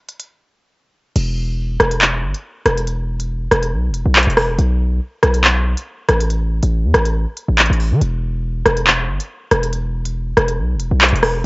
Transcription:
0.09 closed hi-hat
0.20 closed hi-hat
1.16 808-style bass E1, closed hi-hat, crash
1.80 808-style bass E1, cross-stick, closed hi-hat
1.91 closed hi-hat
2.01 clap, closed hi-hat
2.23 808-style bass G1
2.34 closed hi-hat
2.66 808-style bass E1, cross-stick, closed hi-hat
2.77 closed hi-hat
2.87 closed hi-hat
3.20 closed hi-hat
3.51 808-style bass E1, cross-stick, closed hi-hat
3.63 closed hi-hat
3.73 808-style bass B1
3.89 808-style bass E1
3.94 closed hi-hat
4.06 808-style bass B1
4.16 clap, closed hi-hat
4.23 closed hi-hat
4.27 808-style bass E1, closed hi-hat
4.37 cross-stick, open hi-hat
4.59 808-style bass B1, closed hi-hat
5.23 808-style bass B1, cross-stick, closed hi-hat
5.34 closed hi-hat
5.44 clap, closed hi-hat
5.77 closed hi-hat
6.08 808-style bass A1, cross-stick, closed hi-hat
6.20 closed hi-hat
6.30 closed hi-hat
6.63 808-style bass A1, closed hi-hat
6.84 808-style bass E2
6.94 808-style bass A1, cross-stick, closed hi-hat
7.05 closed hi-hat
7.37 closed hi-hat
7.48 808-style bass A1
7.59 clap, closed hi-hat
7.66 closed hi-hat
7.70 808-style bass A1, closed hi-hat
7.80 open hi-hat
7.91 808-style bass E3
8.01 808-style bass E1, closed hi-hat
8.66 808-style bass E1, cross-stick, closed hi-hat
8.77 closed hi-hat
8.87 clap, closed hi-hat
9.09 808-style bass G1
9.20 closed hi-hat
9.51 808-style bass E1, cross-stick, closed hi-hat
9.63 closed hi-hat
9.73 closed hi-hat
10.05 closed hi-hat
10.37 808-style bass E1, cross-stick, closed hi-hat
10.48 closed hi-hat
10.59 808-style bass B1
10.75 808-style bass E1
10.80 closed hi-hat
10.91 808-style bass B1
11.01 clap, closed hi-hat
11.09 closed hi-hat
11.13 808-style bass E1, closed hi-hat
11.23 cross-stick, open hi-hat

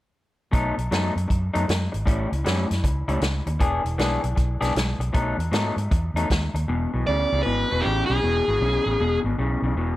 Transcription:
0.52 fingered electric bass B1, clean electric guitar B2 F#3 A3 D#4, kick, closed hi-hat
0.78 fingered electric bass B1, muted clean electric guitar stroke, closed hi-hat
0.91 fingered electric bass F#2, clean electric guitar B2 F#3 A3 D#4, snare, closed hi-hat
1.16 fingered electric bass F#2, muted clean electric guitar stroke, closed hi-hat
1.28 fingered electric bass F#2, muted clean electric guitar stroke, kick, closed hi-hat
1.54 fingered electric bass F#2, clean electric guitar B2 F#3 A3 D#4, closed hi-hat
1.69 fingered electric bass F#2, snare, closed hi-hat
1.92 fingered electric bass G#1, muted clean electric guitar stroke, closed hi-hat
2.06 fingered electric bass A1, clean electric guitar A2 G3 C#4 E4, kick, closed hi-hat
2.31 fingered electric bass C#2, muted clean electric guitar stroke, closed hi-hat
2.44 fingered electric bass F#2, clean electric guitar A2 G3 C#4 E4, snare, closed hi-hat
2.69 fingered electric bass F#2, muted clean electric guitar stroke, snare, closed hi-hat
2.84 fingered electric bass C#2, muted clean electric guitar stroke, kick, closed hi-hat
3.08 fingered electric bass C#2, clean electric guitar A2 G3 C#4 E4, closed hi-hat
3.21 fingered electric bass C#2, muted clean electric guitar stroke, snare, closed hi-hat
3.46 fingered electric bass D#2, muted clean electric guitar stroke, closed hi-hat
3.60 fingered electric bass E1, clean electric guitar E3 B3 D4 G#4, kick, closed hi-hat
3.84 fingered electric bass E1, muted clean electric guitar stroke, closed hi-hat
3.98 fingered electric bass B1, clean electric guitar E3 B3 D4 G#4, snare, closed hi-hat
4.23 fingered electric bass B1, muted clean electric guitar stroke, closed hi-hat
4.36 fingered electric bass B1, muted clean electric guitar stroke, kick, closed hi-hat
4.61 fingered electric bass B1, clean electric guitar E3 B3 D4 G#4, snare, closed hi-hat
4.75 fingered electric bass B1, muted clean electric guitar stroke, snare, closed hi-hat
4.99 fingered electric bass B1, muted clean electric guitar stroke, closed hi-hat
5.13 fingered electric bass B1, clean electric guitar B2 F#3 A3 D#4, kick, closed hi-hat
5.38 fingered electric bass E2, muted clean electric guitar stroke, closed hi-hat
5.51 fingered electric bass G#2, clean electric guitar B2 F#3 A3 D#4, snare, closed hi-hat
5.76 fingered electric bass G#2, muted clean electric guitar stroke, closed hi-hat
5.91 fingered electric bass E2, muted clean electric guitar stroke, kick, closed hi-hat
6.14 fingered electric bass E2, clean electric guitar B2 F#3 A3 D#4, closed hi-hat
6.30 fingered electric bass D#2, muted clean electric guitar stroke, kick, snare, closed hi-hat
6.54 fingered electric bass D#2, muted clean electric guitar stroke, closed hi-hat
6.68 fingered electric bass E1, clean electric guitar E2 B2
6.93 fingered electric bass B1, clean electric guitar E2 B2
7.07 fingered electric bass D2, clean electric guitar E2 C#3, lead electric guitar D5
7.32 fingered electric bass C#2, clean electric guitar E2 C#3
7.43 fingered electric bass G#1, clean electric guitar E2 B2, lead electric guitar B4
7.70 fingered electric bass E1, clean electric guitar E2 B2
7.81 clean electric guitar E2 C#3, lead electric guitar G4
7.86 fingered electric bass A1
8.06 fingered electric bass B1, clean electric guitar E2, lead electric guitar G#4
8.10 clean electric guitar C#3
8.23 fingered electric bass E1, clean electric guitar E2 B2
8.48 fingered electric bass G#1, clean electric guitar E2 B2
8.61 fingered electric bass B1, clean electric guitar E2 C#3
8.86 fingered electric bass A1, clean electric guitar E2 C#3
9.00 fingered electric bass E1, clean electric guitar E2 B2
9.24 fingered electric bass G#1, clean electric guitar E2 B2
9.38 fingered electric bass B1, clean electric guitar E2 C#3
9.62 fingered electric bass B1, clean electric guitar E2 C#3
9.75 fingered electric bass E1, clean electric guitar E2 B2

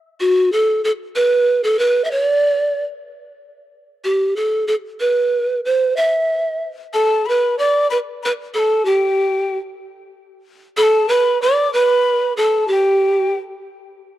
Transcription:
0.20 pan flute F#4
0.52 pan flute A4
0.84 pan flute A4
1.16 pan flute B4
1.64 pan flute A4
1.79 pan flute B4
2.04 pan flute E5
2.11 pan flute C#5
2.22 pan flute D5
4.04 pan flute G4
4.36 pan flute A4
4.67 pan flute A4
5.00 pan flute B4
5.65 pan flute C5
5.97 pan flute E5
6.93 pan flute A4, quena A5
7.26 pan flute B4, quena B5
7.59 pan flute D5, quena D6
7.90 pan flute B4, quena B5
8.23 pan flute B4, quena B5
8.54 pan flute A4, quena B5
8.59 quena A5
8.85 pan flute G4, quena G5
10.77 pan flute A4, quena B5
10.83 quena A5
11.09 pan flute B4, quena B5
11.42 pan flute D5, quena D6
11.73 pan flute B4, quena B5
12.37 pan flute A4, quena A5
12.68 pan flute G4
12.72 quena G5

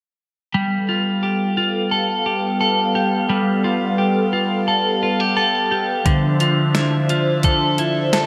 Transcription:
0.54 clean electric guitar G3, analog synth pad G3 B3 A4 F5
0.89 clean electric guitar F4
1.23 clean electric guitar G4
1.57 clean electric guitar F4
1.91 clean electric guitar A4
2.26 clean electric guitar G4
2.61 clean electric guitar A4
2.95 clean electric guitar G4
3.29 clean electric guitar G3
3.64 clean electric guitar F4
3.98 clean electric guitar G4
4.33 clean electric guitar F4
4.68 clean electric guitar A4
5.03 clean electric guitar F4
5.20 clean electric guitar G4
5.37 clean electric guitar A4
5.71 clean electric guitar G4
6.05 clean electric guitar D3, analog synth pad F3 D4 C5 E5, kick, closed hi-hat
6.40 clean electric guitar F4, closed hi-hat
6.75 clean electric guitar E4, snare, closed hi-hat
7.09 clean electric guitar F4, closed hi-hat
7.43 clean electric guitar A4, kick, closed hi-hat
7.78 clean electric guitar E4, closed hi-hat
8.13 clean electric guitar A4, snare, closed hi-hat

